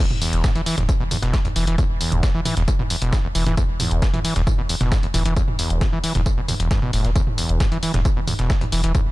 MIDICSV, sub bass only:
0, 0, Header, 1, 2, 480
1, 0, Start_track
1, 0, Key_signature, 1, "minor"
1, 0, Tempo, 447761
1, 1911, Time_signature, 4, 2, 24, 8
1, 9772, End_track
2, 0, Start_track
2, 0, Title_t, "Sub bass"
2, 0, Program_c, 0, 38
2, 114, Note_on_c, 0, 28, 72
2, 229, Note_off_c, 0, 28, 0
2, 354, Note_on_c, 0, 28, 77
2, 469, Note_off_c, 0, 28, 0
2, 594, Note_on_c, 0, 28, 74
2, 709, Note_off_c, 0, 28, 0
2, 835, Note_on_c, 0, 28, 85
2, 949, Note_off_c, 0, 28, 0
2, 1074, Note_on_c, 0, 28, 78
2, 1189, Note_off_c, 0, 28, 0
2, 1314, Note_on_c, 0, 28, 75
2, 1429, Note_off_c, 0, 28, 0
2, 1554, Note_on_c, 0, 28, 79
2, 1665, Note_off_c, 0, 28, 0
2, 1671, Note_on_c, 0, 28, 97
2, 1788, Note_off_c, 0, 28, 0
2, 1794, Note_on_c, 0, 28, 79
2, 1909, Note_off_c, 0, 28, 0
2, 2035, Note_on_c, 0, 28, 73
2, 2149, Note_off_c, 0, 28, 0
2, 2274, Note_on_c, 0, 28, 82
2, 2389, Note_off_c, 0, 28, 0
2, 2514, Note_on_c, 0, 28, 75
2, 2629, Note_off_c, 0, 28, 0
2, 2754, Note_on_c, 0, 28, 80
2, 2869, Note_off_c, 0, 28, 0
2, 2994, Note_on_c, 0, 28, 81
2, 3109, Note_off_c, 0, 28, 0
2, 3234, Note_on_c, 0, 28, 78
2, 3349, Note_off_c, 0, 28, 0
2, 3474, Note_on_c, 0, 28, 77
2, 3585, Note_off_c, 0, 28, 0
2, 3591, Note_on_c, 0, 28, 101
2, 3707, Note_off_c, 0, 28, 0
2, 3714, Note_on_c, 0, 28, 84
2, 3829, Note_off_c, 0, 28, 0
2, 3954, Note_on_c, 0, 28, 74
2, 4069, Note_off_c, 0, 28, 0
2, 4194, Note_on_c, 0, 28, 79
2, 4309, Note_off_c, 0, 28, 0
2, 4434, Note_on_c, 0, 28, 77
2, 4549, Note_off_c, 0, 28, 0
2, 4674, Note_on_c, 0, 28, 81
2, 4789, Note_off_c, 0, 28, 0
2, 4914, Note_on_c, 0, 28, 81
2, 5029, Note_off_c, 0, 28, 0
2, 5155, Note_on_c, 0, 28, 80
2, 5269, Note_off_c, 0, 28, 0
2, 5394, Note_on_c, 0, 28, 80
2, 5505, Note_off_c, 0, 28, 0
2, 5511, Note_on_c, 0, 28, 96
2, 5627, Note_off_c, 0, 28, 0
2, 5634, Note_on_c, 0, 28, 82
2, 5749, Note_off_c, 0, 28, 0
2, 5874, Note_on_c, 0, 28, 70
2, 5989, Note_off_c, 0, 28, 0
2, 6114, Note_on_c, 0, 28, 80
2, 6229, Note_off_c, 0, 28, 0
2, 6354, Note_on_c, 0, 28, 74
2, 6469, Note_off_c, 0, 28, 0
2, 6594, Note_on_c, 0, 28, 78
2, 6709, Note_off_c, 0, 28, 0
2, 6834, Note_on_c, 0, 28, 78
2, 6949, Note_off_c, 0, 28, 0
2, 7074, Note_on_c, 0, 28, 83
2, 7189, Note_off_c, 0, 28, 0
2, 7314, Note_on_c, 0, 28, 75
2, 7424, Note_off_c, 0, 28, 0
2, 7431, Note_on_c, 0, 28, 97
2, 7547, Note_off_c, 0, 28, 0
2, 7553, Note_on_c, 0, 28, 83
2, 7669, Note_off_c, 0, 28, 0
2, 7794, Note_on_c, 0, 28, 70
2, 7909, Note_off_c, 0, 28, 0
2, 8034, Note_on_c, 0, 28, 77
2, 8149, Note_off_c, 0, 28, 0
2, 8273, Note_on_c, 0, 28, 79
2, 8389, Note_off_c, 0, 28, 0
2, 8513, Note_on_c, 0, 28, 84
2, 8629, Note_off_c, 0, 28, 0
2, 8754, Note_on_c, 0, 28, 78
2, 8869, Note_off_c, 0, 28, 0
2, 8993, Note_on_c, 0, 28, 81
2, 9109, Note_off_c, 0, 28, 0
2, 9234, Note_on_c, 0, 28, 80
2, 9345, Note_off_c, 0, 28, 0
2, 9352, Note_on_c, 0, 28, 98
2, 9468, Note_off_c, 0, 28, 0
2, 9474, Note_on_c, 0, 28, 83
2, 9589, Note_off_c, 0, 28, 0
2, 9715, Note_on_c, 0, 28, 75
2, 9772, Note_off_c, 0, 28, 0
2, 9772, End_track
0, 0, End_of_file